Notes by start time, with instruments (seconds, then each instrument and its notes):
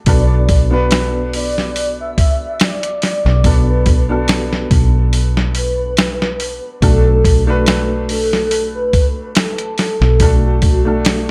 0.06 fingered electric bass B1, upright piano B3 D4 F#4 A4, soft synth lead D5, kick, open hi-hat
0.49 kick, open hi-hat
0.71 upright piano B3 D4 F#4 B4
0.91 snare, open hi-hat
1.33 soft synth lead D5, open hi-hat
1.58 snare
1.76 open hi-hat
2.01 soft synth lead E5
2.18 kick, open hi-hat
2.60 soft synth lead D5, snare, open hi-hat
2.83 closed hi-hat
3.02 soft synth lead D5, snare, open hi-hat
3.26 fingered electric bass B1, snare
3.44 upright piano B3 D4 F#4 A4, kick, open hi-hat
3.70 soft synth lead B4
3.86 kick, open hi-hat
4.09 upright piano B3 D4 F#4 A4
4.28 snare, open hi-hat
4.53 snare
4.71 fingered electric bass B1, kick, open hi-hat
5.13 open hi-hat
5.37 snare
5.55 soft synth lead B4, open hi-hat
5.97 snare, open hi-hat
6.22 snare
6.40 open hi-hat
6.82 fingered electric bass B1, upright piano A3 D4 F#4 A4, soft synth lead A4, kick, open hi-hat
7.25 kick, open hi-hat
7.47 upright piano A3 D4 F#4 B4
7.66 snare, open hi-hat
8.09 soft synth lead A4, open hi-hat
8.33 snare
8.51 open hi-hat
8.75 soft synth lead B4
8.93 kick, open hi-hat
9.35 soft synth lead A4, snare, open hi-hat
9.58 closed hi-hat
9.78 soft synth lead A4, snare, open hi-hat
10.01 fingered electric bass B1, snare
10.20 upright piano A3 D4 F#4 A4, kick, open hi-hat
10.46 soft synth lead F#4
10.62 kick, open hi-hat
10.85 upright piano A3 D4 F#4 A4
11.05 snare, open hi-hat